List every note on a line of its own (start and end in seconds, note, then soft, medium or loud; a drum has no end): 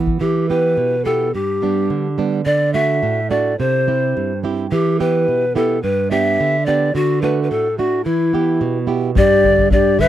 0.00 0.18 E3 medium
0.00 0.20 B3 soft
0.07 bombo low medium
0.20 0.76 E3 medium
0.20 0.51 G4 medium
0.49 0.95 B3 soft
0.49 0.95 E4 soft
0.49 0.95 G4 soft
0.49 1.06 B4 medium
0.77 1.32 B2 medium
1.05 1.28 B3 soft
1.05 1.28 E4 soft
1.05 1.28 G4 soft
1.05 1.36 A4 medium
1.34 1.89 G2 medium
1.34 2.18 G4 medium
1.62 2.07 G3 soft
1.62 2.07 B3 soft
1.62 2.07 D4 soft
1.90 2.44 D3 medium
2.18 2.40 G3 soft
2.18 2.41 B3 soft
2.18 2.41 D4 soft
2.46 3.01 D3 medium
2.46 2.72 D5 medium
2.74 3.19 A3 soft
2.74 3.19 D4 soft
2.74 3.20 F#4 soft
2.74 3.32 E5 medium
3.03 3.57 A2 medium
3.30 3.53 A3 soft
3.30 3.53 D4 soft
3.30 3.53 F#4 soft
3.30 3.58 D5 medium
3.59 4.13 C3 medium
3.59 4.39 C5 medium
3.88 4.32 C4 soft
3.88 4.32 E4 soft
3.88 4.32 G4 soft
4.17 4.70 G2 medium
4.44 4.66 C4 soft
4.44 4.66 E4 soft
4.44 4.66 G4 soft
4.72 5.26 E3 medium
4.72 5.01 G4 medium
5.00 5.44 B3 soft
5.00 5.44 E4 soft
5.00 5.44 G4 soft
5.00 5.57 B4 medium
5.28 5.82 B2 medium
5.55 5.77 B3 soft
5.55 5.78 E4 soft
5.55 5.78 G4 soft
5.55 5.82 A4 medium
5.83 6.37 G2 medium
5.83 6.09 B4 medium
6.11 6.56 B3 soft
6.11 6.56 D4 soft
6.11 6.56 G4 soft
6.11 6.68 E5 medium
6.40 6.93 D3 medium
6.66 6.89 B3 soft
6.66 6.89 D4 soft
6.66 6.90 G4 soft
6.66 6.97 D5 medium
6.95 7.49 D3 medium
6.95 7.23 F#4 medium
7.22 7.67 A3 soft
7.22 7.67 D4 soft
7.22 7.67 F#4 soft
7.22 7.42 B4 medium
7.43 7.52 B4 medium
7.51 8.04 A2 medium
7.51 7.77 A4 medium
7.78 8.00 A3 soft
7.78 8.00 D4 soft
7.78 8.06 F#4 medium
7.78 8.01 F#4 soft
8.04 8.60 E3 medium
8.04 8.88 E4 medium
8.33 8.78 B3 soft
8.33 8.78 E4 soft
8.33 8.78 G4 soft
8.61 9.15 B2 medium
8.87 9.10 B3 soft
8.87 9.10 E4 soft
8.87 9.10 G4 soft
9.15 10.08 G2 medium
9.15 9.68 G4 medium
9.15 9.68 D5 loud
9.15 bombo low medium
9.44 9.71 D3 soft
9.44 bombo low medium
9.58 bombo low medium
9.71 9.98 D4 medium
9.71 10.02 G4 medium
9.71 10.01 D5 medium
9.71 bombo low medium
9.99 10.08 D3 soft
9.99 10.08 B4 medium
9.99 10.08 E5 loud
9.99 bombo low soft